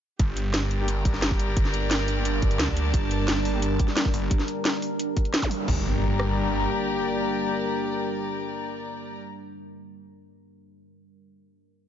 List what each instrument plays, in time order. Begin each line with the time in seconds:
0.19 detuned saw bass G1, ambient pad G3 D4 A#4, string section G4, kick, closed hi-hat
0.37 closed hi-hat
0.47 string section A#4
0.54 string section D5, snare, closed hi-hat
0.71 string section A#5, closed hi-hat
0.79 brass ensemble A#3 D4 G4
0.88 closed hi-hat
1.05 detuned saw bass G1, kick, closed hi-hat
1.14 snare
1.22 snare, closed hi-hat
1.31 kick
1.40 closed hi-hat
1.57 kick, closed hi-hat
1.65 snare
1.74 closed hi-hat
1.91 snare, closed hi-hat
2.08 closed hi-hat
2.17 brass ensemble A#3 D4 G4
2.25 closed hi-hat
2.42 detuned saw bass G1, kick, closed hi-hat
2.50 string section A5, closed hi-hat
2.60 detuned saw bass D2, snare, closed hi-hat
2.68 kick
2.77 closed hi-hat
2.94 detuned saw bass G1, kick, closed hi-hat
3.11 closed hi-hat
3.28 snare, closed hi-hat
3.45 open hi-hat
3.54 brass ensemble A#3 D4 G4
3.62 closed hi-hat
3.80 kick, closed hi-hat
3.88 snare
3.97 snare, closed hi-hat
4.05 kick
4.14 detuned saw bass G1, open hi-hat
4.31 kick, closed hi-hat
4.40 snare
4.48 closed hi-hat
4.65 snare, closed hi-hat
4.82 open hi-hat
4.99 closed hi-hat
5.17 kick, closed hi-hat
5.25 closed hi-hat
5.34 snare, closed hi-hat
5.42 kick, zap
5.51 open hi-hat
5.68 detuned saw bass G1, ambient pad G3 D4 A#4, brass ensemble A#3 D4 G4, string section G4, kick, crash, impact
5.73 string section A#4
5.78 string section D5
5.83 string section A#5
6.20 cross-stick